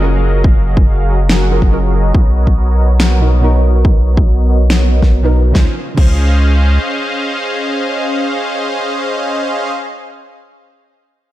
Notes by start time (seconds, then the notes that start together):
Already playing: F#1 F#3 F#4 G#4 A#4 D#5
0.00 F#3 C#4 F4 A#4
0.13 F#3 F#4 G#4 A#4 F5
0.23 F#3 F#4 G#4 A#4 D#5
0.44 F#3 F#4 G#4 A#4 F5, kick
0.66 F#3 F#4 G#4 A#4 D#5
0.77 kick
0.87 F#3 F#4 G#4 A#4 F5
1.08 F#3 F#4 G#4 A#4 D#5
1.29 F#3 F#4 G#4 A#4 F#5, finger snap, snare
1.50 F#3 C#4 F4 F#4 G#4 A#4 D#5
1.62 F#3 F#4 G#4 A#4 D#5, kick
1.71 F#3 C#4 F4 A#4
1.83 F#3 F#4 G#4 A#4 F5
1.93 F#3 F#4 G#4 A#4 D#5
2.14 B1 B3 F#4 A#4 C#5 D#5, kick
2.36 B3 F#4 A#4 C#5 D#5
2.47 kick
2.57 B3 F#4 A#4 C#5 D#5
2.78 B3 F#4 A#4 C#5 D#5
3.00 B3 F#4 A#4 C#5 F#5, finger snap, snare
3.20 B2 B3 D#4 F#4 A#4 C#5 D#5
3.32 B3 F#4 A#4 C#5 D#5
3.40 B2 B3 D#4 A#4
3.54 B3 F#4 A#4 C#5 D#5
3.64 B3 F#4 A#4 C#5 D#5
3.85 B3 F#4 A#4 C#5 D#5, kick
4.06 B3 F#4 A#4 C#5 D#5
4.17 kick
4.27 B3 F#4 A#4 C#5 D#5
4.49 B3 F#4 A#4 C#5 D#5
4.70 B3 F#4 A#4 C#5 F#5, finger snap, snare
4.91 B3 F#4 A#4 C#5 D#5
5.02 B3 F#4 A#4 C#5 D#5, kick, snare
5.23 B2 B3 D#4 F#4 A#4 C#5 D#5
5.33 B3 F#4 A#4 C#5 D#5
5.52 C#2 C#3 C#4 G#4 C5 D#5 F5, kick, snare
5.56 F4 C5
5.94 C#2 C#3 C#4 G#4 C5 D#5 F5, kick, crash
5.98 F4 C5